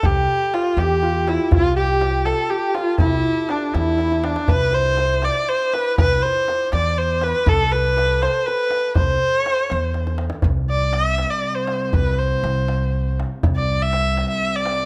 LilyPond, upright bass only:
\new Staff \with { instrumentName = "Upright bass" } { \clef bass \time 6/8 \tempo 4. = 81 c,8 r4 e,4. | c,2 r4 | c,8 r4 e,4. | c,2 r4 |
c,8 r4 e,4. | c,2 r4 | c,8 r4 e,4. | c,2 r4 |
c,4 c,2 | c,2 r4 | }